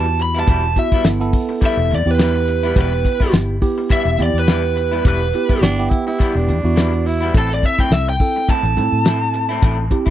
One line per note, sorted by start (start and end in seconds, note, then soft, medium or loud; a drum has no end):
0.00 0.43 E2 medium
0.00 0.68 B3 medium
0.00 0.68 E4 medium
0.00 0.68 F#4 medium
0.00 0.19 A5 medium
0.06 muted clean electric guitar stroke soft
0.19 0.36 B5 medium
0.19 muted clean electric guitar stroke soft
0.19 closed hi-hat medium
0.34 0.47 G3 soft
0.34 0.48 B3 medium
0.34 0.47 E4 medium
0.34 closed hi-hat soft
0.40 0.77 A5 medium
0.47 0.74 E1 medium
0.47 0.63 E3 medium
0.47 0.64 G3 medium
0.47 0.64 B3 medium
0.47 0.63 E4 medium
0.47 kick loud
0.47 closed hi-hat medium
0.64 muted clean electric guitar stroke soft
0.76 1.03 B3 medium
0.76 1.03 E4 medium
0.76 1.03 F#4 medium
0.76 1.05 E5 medium
0.76 muted clean electric guitar stroke soft
0.76 kick medium
0.76 closed hi-hat medium
0.92 1.05 G3 soft
0.92 1.05 B3 soft
0.92 1.05 E4 soft
0.92 kick medium
0.92 closed hi-hat soft
1.04 1.31 G1 medium
1.04 1.19 B3 medium
1.04 1.19 E4 medium
1.04 1.19 A4 medium
1.04 muted clean electric guitar stroke soft
1.04 snare loud
1.04 closed hi-hat medium
1.20 1.98 B3 medium
1.20 1.99 E4 medium
1.20 1.99 A4 loud
1.20 closed hi-hat soft
1.33 kick medium
1.33 open hi-hat medium
1.49 muted clean electric guitar stroke soft
1.61 1.77 E3 medium
1.61 1.78 G3 medium
1.61 1.77 B3 medium
1.61 1.77 E4 medium
1.61 kick medium
1.61 closed hi-hat medium
1.66 1.92 E5 medium
1.77 1.92 E1 medium
1.77 muted clean electric guitar stroke soft
1.77 closed hi-hat soft
1.90 2.05 E2 medium
1.90 muted clean electric guitar stroke soft
1.90 closed hi-hat soft
1.95 2.11 D5 medium
2.06 2.72 E2 medium
2.06 2.71 B3 medium
2.06 2.71 E4 medium
2.06 2.71 G4 medium
2.11 2.76 B4 medium
2.19 2.35 E3 medium
2.19 2.35 G3 medium
2.19 2.35 B3 medium
2.19 2.34 E4 medium
2.19 snare loud
2.19 closed hi-hat medium
2.35 muted clean electric guitar stroke soft
2.35 closed hi-hat soft
2.48 muted clean electric guitar stroke soft
2.48 closed hi-hat medium
2.63 2.76 G3 soft
2.63 2.77 B3 soft
2.63 2.76 E4 medium
2.63 closed hi-hat soft
2.75 3.02 E1 loud
2.75 2.92 E3 medium
2.75 2.92 G3 medium
2.75 3.55 B3 medium
2.75 2.92 B3 medium
2.75 3.55 E4 medium
2.75 2.91 E4 medium
2.75 3.56 G4 medium
2.75 kick loud
2.75 closed hi-hat medium
2.81 3.34 B4 medium
2.92 muted clean electric guitar stroke soft
2.92 closed hi-hat soft
3.05 muted clean electric guitar stroke soft
3.05 kick medium
3.05 closed hi-hat medium
3.20 3.33 G3 soft
3.20 3.33 B3 medium
3.20 3.33 E4 medium
3.20 kick medium
3.33 3.59 G1 medium
3.33 muted clean electric guitar stroke soft
3.33 snare loud
3.33 closed hi-hat medium
3.61 4.15 B3 medium
3.61 4.15 E4 medium
3.61 4.15 G4 medium
3.61 kick medium
3.61 open hi-hat medium
3.78 muted clean electric guitar stroke soft
3.90 4.06 E3 medium
3.90 4.06 G3 medium
3.90 4.05 B3 medium
3.90 4.05 E4 medium
3.90 4.19 E5 medium
3.90 kick medium
3.90 closed hi-hat medium
4.05 4.20 E1 medium
4.05 muted clean electric guitar stroke soft
4.05 closed hi-hat soft
4.18 4.33 E2 medium
4.18 5.25 B3 medium
4.18 5.25 E4 medium
4.18 5.25 G4 medium
4.18 muted clean electric guitar stroke soft
4.18 closed hi-hat medium
4.23 4.36 D5 medium
4.34 5.00 E2 medium
4.39 5.05 B4 medium
4.48 4.63 E3 medium
4.48 4.64 G3 medium
4.48 4.63 B3 medium
4.48 4.63 E4 medium
4.48 snare loud
4.48 closed hi-hat medium
4.64 muted clean electric guitar stroke soft
4.76 muted clean electric guitar stroke soft
4.76 closed hi-hat medium
4.91 5.05 G3 soft
4.91 5.05 B3 soft
4.91 5.05 E4 medium
4.91 closed hi-hat soft
5.05 5.31 E1 loud
5.05 5.21 E3 medium
5.05 5.21 G3 medium
5.05 5.20 B3 medium
5.05 5.20 E4 medium
5.05 5.62 B4 medium
5.05 kick loud
5.05 closed hi-hat medium
5.21 muted clean electric guitar stroke soft
5.33 5.61 B3 medium
5.33 5.61 E4 medium
5.33 5.61 G4 medium
5.33 muted clean electric guitar stroke soft
5.33 closed hi-hat medium
5.49 5.61 G3 soft
5.49 5.62 B3 soft
5.49 5.62 E4 medium
5.49 kick medium
5.49 closed hi-hat soft
5.61 5.88 G1 medium
5.61 5.77 B3 medium
5.61 5.91 D4 medium
5.61 5.77 E4 medium
5.61 5.77 G4 medium
5.61 muted clean electric guitar stroke soft
5.61 snare loud
5.61 closed hi-hat medium
5.79 6.57 B3 medium
5.79 6.57 E4 medium
5.79 6.57 G4 medium
5.79 closed hi-hat soft
5.90 6.05 E4 medium
5.90 kick medium
5.90 closed hi-hat medium
6.07 6.37 E4 medium
6.07 muted clean electric guitar stroke soft
6.19 6.35 E3 medium
6.19 6.35 G3 medium
6.19 6.36 B3 medium
6.19 6.35 E4 medium
6.19 kick medium
6.19 closed hi-hat medium
6.35 6.50 E1 medium
6.35 7.08 D4 medium
6.35 muted clean electric guitar stroke soft
6.35 closed hi-hat soft
6.48 6.63 E2 medium
6.48 muted clean electric guitar stroke soft
6.48 closed hi-hat medium
6.64 7.30 E2 medium
6.64 7.29 B3 medium
6.64 7.29 E4 medium
6.64 7.29 F#4 medium
6.76 6.92 E3 medium
6.76 6.93 G3 medium
6.76 6.92 B3 medium
6.76 6.91 E4 medium
6.76 snare loud
6.76 closed hi-hat medium
6.93 muted clean electric guitar stroke soft
6.93 closed hi-hat soft
7.05 7.33 E4 medium
7.05 muted clean electric guitar stroke soft
7.05 open hi-hat medium
7.21 7.34 G3 soft
7.21 7.34 B3 medium
7.21 7.33 E4 medium
7.21 closed hi-hat soft
7.33 7.60 A1 medium
7.33 7.50 A2 medium
7.33 7.50 A3 medium
7.33 8.13 C4 medium
7.33 7.50 C4 medium
7.33 8.13 E4 medium
7.33 7.49 E4 medium
7.33 8.14 A4 medium
7.33 kick loud
7.33 closed hi-hat medium
7.38 7.51 A4 medium
7.50 7.66 D5 medium
7.50 muted clean electric guitar stroke soft
7.50 closed hi-hat soft
7.63 7.79 E5 medium
7.63 muted clean electric guitar stroke soft
7.63 kick medium
7.63 closed hi-hat medium
7.78 7.91 A3 soft
7.78 7.92 C4 soft
7.78 7.91 E4 soft
7.78 7.93 G5 medium
7.78 kick medium
7.91 8.17 C2 medium
7.91 8.07 E5 medium
7.91 muted clean electric guitar stroke soft
7.91 snare loud
7.91 closed hi-hat medium
8.09 8.48 G5 medium
8.20 8.73 C4 medium
8.20 8.73 E4 medium
8.20 8.73 A4 medium
8.20 kick medium
8.20 open hi-hat medium
8.36 muted clean electric guitar stroke soft
8.49 8.64 A2 medium
8.49 8.64 A3 medium
8.49 8.64 C4 medium
8.49 8.64 E4 medium
8.49 10.10 A5 medium
8.49 kick medium
8.49 closed hi-hat medium
8.63 8.78 A1 medium
8.63 muted clean electric guitar stroke soft
8.63 closed hi-hat soft
8.76 8.91 A2 medium
8.76 9.83 C4 medium
8.76 9.83 E4 medium
8.76 9.83 A4 medium
8.76 muted clean electric guitar stroke soft
8.76 closed hi-hat soft
8.92 9.58 A2 medium
9.05 9.21 A2 medium
9.05 9.21 A3 medium
9.05 9.21 C4 medium
9.05 9.20 E4 medium
9.05 snare loud
9.05 closed hi-hat medium
9.21 muted clean electric guitar stroke soft
9.34 muted clean electric guitar stroke soft
9.34 closed hi-hat medium
9.49 9.62 A3 medium
9.49 9.62 C4 medium
9.49 9.62 E4 medium
9.49 closed hi-hat soft
9.62 9.89 A1 medium
9.62 9.78 A2 medium
9.62 9.78 A3 medium
9.62 9.78 C4 loud
9.62 9.77 E4 loud
9.62 kick loud
9.62 closed hi-hat medium
9.79 muted clean electric guitar stroke soft
9.90 10.10 C4 medium
9.90 10.10 E4 medium
9.90 10.10 G4 medium
9.90 muted clean electric guitar stroke soft
9.90 kick medium
9.90 closed hi-hat medium
10.06 10.10 E4 medium
10.06 kick medium
10.06 closed hi-hat soft